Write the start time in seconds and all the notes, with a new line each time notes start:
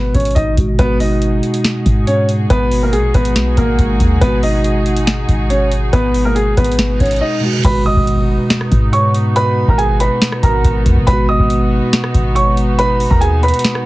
Already playing: G#1 B2 G#3 B3 F#4 B4
0.14 G#1 C#4 C#5, kick, closed hi-hat
0.20 closed hi-hat
0.25 closed hi-hat
0.31 closed hi-hat
0.35 G#1 D#4 D#5, kick, closed hi-hat
0.55 G#1 B2 G#3, kick, closed hi-hat
0.60 F#4
0.73 B2
0.79 G#1 G#3 B3 D#4 F#4 G#4 B4, kick, closed hi-hat
0.84 F#4
1.00 D#4 D#5, open hi-hat
1.22 closed hi-hat
1.43 closed hi-hat
1.54 closed hi-hat
1.64 snare, closed hi-hat
1.86 G#2, kick, closed hi-hat
2.07 C#4 C#5, closed hi-hat
2.29 closed hi-hat
2.50 G#1 B3 B4, kick, closed hi-hat
2.71 open hi-hat
2.83 A#3 A#4
2.92 A#1 G#3 G#4, closed hi-hat
3.14 G#1 B3 B4, kick, closed hi-hat
3.25 closed hi-hat
3.36 B1, snare, closed hi-hat
3.57 G#1 A#3 A#4, kick, closed hi-hat
3.79 G#1, kick, closed hi-hat
4.00 D#2, kick, closed hi-hat
4.16 B2
4.21 G#1 G#3 B3 B4, kick, closed hi-hat
4.27 F#4
4.43 D#4 D#5, open hi-hat
4.64 closed hi-hat
4.86 closed hi-hat
4.96 closed hi-hat
5.07 snare, closed hi-hat
5.29 G#1, kick, closed hi-hat
5.50 C#4 C#5, closed hi-hat
5.72 closed hi-hat
5.93 G#1 B3 B4, kick, closed hi-hat
6.14 open hi-hat
6.25 A#3 A#4
6.35 G#3 G#4, closed hi-hat
6.57 G#1 B3 B4, kick, closed hi-hat
6.64 closed hi-hat
6.72 closed hi-hat
6.79 snare, closed hi-hat, reverse cymbal
7.00 G#1 C#4 C#5, kick, closed hi-hat
7.06 closed hi-hat
7.11 closed hi-hat
7.16 closed hi-hat
7.21 D#4 D#5
7.40 B2 G#3
7.46 F#4
7.59 B2
7.64 G#1 G#3 B3 D#4 F#4 B4 B5, kick, closed hi-hat, crash, impact
7.70 F#4
7.86 D#5 D#6
7.97 G#1, kick
8.07 closed hi-hat
8.50 snare, closed hi-hat
8.61 cross-stick
8.72 G#2, kick, closed hi-hat
8.93 C#5 C#6, closed hi-hat
9.14 closed hi-hat
9.36 B4 B5, closed hi-hat
9.68 G#1 A#4 A#5, kick
9.78 G#4 G#5, closed hi-hat
10.00 B4 B5, closed hi-hat
10.22 snare, closed hi-hat
10.32 cross-stick
10.43 G#1 A#4 A#5, kick, closed hi-hat
10.64 G#1, kick, closed hi-hat
10.86 D#2, kick, closed hi-hat
10.97 G#1, kick
11.02 B2
11.07 G#1 G#3 D#4 B4 B5, kick, closed hi-hat
11.13 F#4
11.29 D#5 D#6
11.39 G#1, kick
11.50 closed hi-hat
11.93 snare, closed hi-hat
12.04 cross-stick
12.14 G#1, kick, closed hi-hat
12.35 C#5 C#6, closed hi-hat
12.57 closed hi-hat
12.79 B4 B5, closed hi-hat
13.00 open hi-hat
13.11 D#2 A#4 A#5, kick
13.21 G#4 G#5, closed hi-hat
13.43 B4 B5, closed hi-hat
13.48 closed hi-hat
13.54 closed hi-hat
13.59 closed hi-hat
13.64 snare, closed hi-hat
13.75 cross-stick